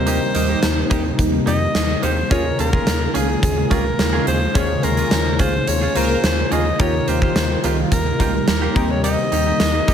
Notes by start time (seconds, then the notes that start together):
Already playing: D#2 C3 D#3 G3 A#3 C4 D#4 G4 A#4 C5
0.06 A#3 D#4 G4, closed hi-hat
0.34 D#2 A#3 D#4 G4, closed hi-hat
0.48 A#3 D#4 G4
0.63 D#2, snare, closed hi-hat
0.76 muted clean electric guitar stroke
0.90 D#2 A#3 D#4 G4, kick, closed hi-hat
1.04 muted clean electric guitar stroke
1.18 D#2, muted clean electric guitar stroke, kick, closed hi-hat
1.32 muted clean electric guitar stroke
1.46 F2 A#3 D#4 G4 D#5, closed hi-hat
1.60 muted clean electric guitar stroke
1.75 D#2, snare, closed hi-hat
1.89 muted clean electric guitar stroke
2.03 D#2 A#3 D#4 G4 C5, closed hi-hat
2.17 muted clean electric guitar stroke
2.30 D#2 C#3 D#3 F3 G#3 C#4 F4 G#4 A#4 C#5, kick, closed hi-hat
2.58 D#2 G3 C#4 F4 G4 G#4 A#4, closed hi-hat
2.72 C#4 F4 G#4, kick
2.87 D#2, muted clean electric guitar stroke, snare, closed hi-hat
3.01 muted clean electric guitar stroke
3.14 C#2 C#4 F4 G#4, closed hi-hat
3.29 muted clean electric guitar stroke
3.43 D#2 G#4, muted clean electric guitar stroke, kick, closed hi-hat
3.57 G#3 G#4, muted clean electric guitar stroke
3.71 C#2 G3 C#4 F4 G4 G#4 A#4, kick, closed hi-hat
3.85 muted clean electric guitar stroke
3.99 D#2, muted clean electric guitar stroke, snare, closed hi-hat
4.13 G#3 C#4 F4 G#4
4.26 D#2 C#4 F4 G#4 C5, closed hi-hat
4.54 D#2 D#3 C#4 F4 G#4 C5 C#5, kick, closed hi-hat
4.69 A#3 A#4
4.83 D#2 C#4 F4 G#4 A#4, closed hi-hat
4.97 G#3 C#4 F4 G#4, closed hi-hat
5.11 D#2, muted clean electric guitar stroke, snare, closed hi-hat
5.26 muted clean electric guitar stroke
5.39 C#2 C#4 F4 G#4 C5, kick, closed hi-hat
5.53 muted clean electric guitar stroke
5.67 D#2 C4 C5 C#5, muted clean electric guitar stroke, closed hi-hat
5.81 C#4 F4 G#4
5.95 C#2 A#3 C#4 F4 G#4 A#4 C5, closed hi-hat
6.10 muted clean electric guitar stroke
6.24 D#2, snare, closed hi-hat
6.38 muted clean electric guitar stroke
6.52 D#2 C#4 F4 G#4 D#5, closed hi-hat
6.78 D#2 D#3 G3 A#3 D#4 F4 G4 A#4 C#5, kick, closed hi-hat
7.08 D#2 A#3 F4 G4 C5, closed hi-hat
7.22 A#3 F4 G4, kick
7.36 D#2, snare, closed hi-hat
7.50 muted clean electric guitar stroke
7.64 C#2 A#3 F4 G4, closed hi-hat
7.78 muted clean electric guitar stroke
7.92 D#2 A#4, muted clean electric guitar stroke, kick, closed hi-hat
8.06 muted clean electric guitar stroke
8.20 C#2 A#3 F4 G4, kick, closed hi-hat
8.34 muted clean electric guitar stroke
8.48 D#2 A#4, muted clean electric guitar stroke, snare, closed hi-hat
8.62 A#3 F4 G4
8.75 D#2 C3 D#3 A#3 C4 D#4 G4 A#4, kick, closed hi-hat
8.90 C#5, muted clean electric guitar stroke
9.04 A#3 D#4 G4 D#5, closed hi-hat
9.32 D#2 A#3 D#4 G4, closed hi-hat
9.46 A#3 D#4 G4
9.60 D#2, snare, closed hi-hat, tambourine
9.74 muted clean electric guitar stroke
9.88 D#2 A#3 D#4 G4, kick, closed hi-hat